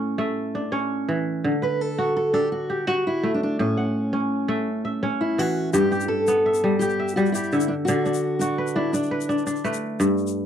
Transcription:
0.00 1.49 A2 medium
0.00 0.18 A3 medium
0.00 0.61 C#4 medium
0.00 0.43 F#5 medium
0.18 2.18 A3 medium
0.18 1.22 E5 medium
0.55 2.23 D4 medium
0.72 1.50 C#4 medium
0.72 1.50 C#5 medium
1.09 1.49 E3 medium
1.44 3.64 D3 medium
1.62 2.85 B4 medium
1.62 1.81 B4 medium
1.81 2.15 A4 medium
1.98 2.76 F#4 medium
2.17 2.34 A4 medium
2.34 4.02 D4 medium
2.34 2.52 G4 medium
2.34 3.65 A4 medium
2.52 2.87 F#4 medium
2.70 3.83 G4 medium
2.88 4.34 F#4 medium
2.88 3.06 F#4 medium
3.07 3.31 E4 medium
3.23 4.48 A3 medium
3.34 3.42 D4 medium
3.43 3.60 D4 medium
3.59 5.79 A2 medium
3.59 5.35 C#4 medium
3.77 4.74 F#5 medium
4.13 5.02 C#4 medium
4.48 6.48 A3 medium
4.48 4.84 E5 medium
4.85 5.88 E5 medium
5.03 6.77 C#4 medium
5.03 6.17 C#5 medium
5.21 5.39 E4 medium
5.38 5.79 E3 medium
5.38 5.73 F#4 medium
5.73 7.93 G2 medium
5.73 6.08 G4 medium
5.73 5.91 G4 medium
5.73 shaker medium
5.92 6.81 G4 medium
5.92 shaker soft
6.01 shaker soft
6.08 6.76 A4 medium
6.27 8.14 B3 medium
6.27 shaker medium
6.46 6.99 E5 medium
6.54 shaker soft
6.64 7.16 G3 medium
6.79 7.16 G4 medium
6.79 7.35 G4 medium
6.79 shaker medium
6.90 shaker soft
7.00 7.52 E5 medium
7.08 shaker soft
7.16 7.57 G3 medium
7.16 7.32 F#4 medium
7.16 shaker soft
7.26 shaker soft
7.32 7.70 E4 medium
7.32 8.47 G4 medium
7.32 shaker medium
7.43 shaker soft
7.52 7.87 D3 medium
7.52 8.56 E5 medium
7.52 shaker soft
7.60 shaker medium
7.68 7.73 D4 medium
7.85 10.05 D3 medium
7.85 8.05 D4 medium
7.85 8.41 F#4 medium
7.85 shaker medium
8.05 8.76 D4 medium
8.05 shaker soft
8.14 shaker soft
8.39 8.77 D4 medium
8.39 9.87 F#4 medium
8.39 shaker medium
8.58 9.11 B4 medium
8.67 shaker soft
8.76 8.94 D4 medium
8.76 8.92 E4 medium
8.93 9.43 D4 medium
8.93 9.29 D4 medium
8.93 shaker medium
9.03 shaker soft
9.11 9.64 B4 medium
9.21 shaker soft
9.29 9.46 D4 medium
9.29 shaker soft
9.38 shaker soft
9.47 10.46 D4 medium
9.47 shaker medium
9.56 shaker soft
9.64 10.46 A3 medium
9.64 10.46 B4 medium
9.64 shaker soft
9.74 shaker soft
10.00 10.46 G2 medium
10.00 shaker medium
10.18 shaker soft
10.27 shaker soft

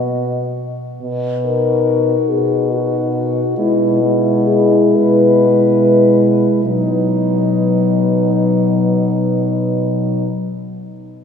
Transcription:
0.00 0.64 B2 soft
0.00 0.69 F#4 soft
0.00 0.64 D#5 soft
1.02 2.15 B2 soft
1.46 2.70 D#4 soft
1.46 2.71 F#4 soft
1.46 2.32 A#4 soft
2.30 3.42 B2 soft
2.30 2.72 G#4 soft
2.72 3.55 D#4 soft
2.72 3.59 F#4 soft
2.72 3.56 F#4 soft
3.57 4.78 B2 soft
3.57 4.00 G#3 soft
3.57 4.47 E4 soft
3.57 4.00 E4 soft
4.01 5.46 G#3 soft
4.01 5.46 E4 soft
4.46 4.97 G#4 soft
4.95 6.45 B2 soft
4.95 6.64 B4 medium
5.49 6.62 G#3 soft
5.49 6.63 E4 soft
6.64 10.26 B2 soft
6.64 10.26 F#3 soft
6.64 10.29 D#4 soft
6.64 10.27 B4 soft

